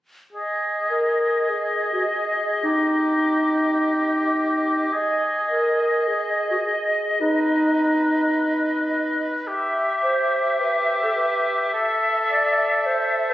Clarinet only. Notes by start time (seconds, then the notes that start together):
0.91 A#4
1.49 G#4
1.93 F#4
2.07 G#4
2.63 D#4
5.50 A#4
6.07 G#4
6.51 F#4
6.65 G#4
7.21 D#4
10.04 C5
10.60 B4
11.04 A4
11.16 B4
12.29 D5
12.86 C5
13.30 B4